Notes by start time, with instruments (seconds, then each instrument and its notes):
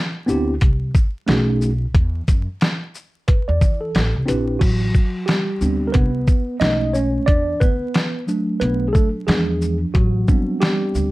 0.26 upright bass D2, tine electric piano B3 C4 D4 E4 G4, shaker
0.61 upright bass C2, kick, closed hi-hat
0.95 kick, shaker
1.27 upright bass B1, tine electric piano A3 C#4 D#4 F#4 G#4, snare, closed hi-hat
1.61 shaker
1.94 upright bass E2, kick, closed hi-hat
2.28 upright bass F#2, kick, closed hi-hat, shaker
2.61 snare, closed hi-hat
2.95 shaker
3.28 tine electric piano B4, kick, closed hi-hat
3.48 upright bass E2, tine electric piano D5
3.61 upright bass E3, kick, shaker
3.81 tine electric piano A4
3.95 upright bass A1, snare, closed hi-hat
4.15 upright bass C2
4.26 upright bass A#1, tine electric piano C4 D4 E4 G4 B4, closed hi-hat, shaker
4.59 upright bass A1, tine electric piano F#3 F#4, kick, closed hi-hat, crash
4.95 kick, shaker
5.26 tine electric piano G3 G4, snare, closed hi-hat
5.61 upright bass D2, tine electric piano G3 B3 C4 D4, shaker
5.87 tine electric piano A#4
5.92 upright bass C2, tine electric piano B3 B4, kick, closed hi-hat
6.27 kick, shaker
6.60 upright bass B1, tine electric piano G#3 A3 C#4 D#4 D#5, snare, closed hi-hat
6.93 tine electric piano C#4 C#5, shaker
7.26 upright bass E2, tine electric piano D4 D5, kick, closed hi-hat
7.60 upright bass D2, tine electric piano B3 B4, kick, shaker
7.94 snare, closed hi-hat
8.27 tine electric piano F#3 A3 D4, shaker
8.60 upright bass B1, tine electric piano B3 B4, closed hi-hat
8.88 tine electric piano G#4
8.93 tine electric piano A3 A4, kick, shaker
9.27 upright bass E2, tine electric piano F3 G#3 D4 G#4, snare, closed hi-hat
9.62 shaker
9.94 upright bass A1, tine electric piano F#3 F#4, kick, closed hi-hat
10.28 tine electric piano G3 B3 C4 D4, kick, shaker
10.60 tine electric piano G3 G4, snare, closed hi-hat
10.95 upright bass D2, shaker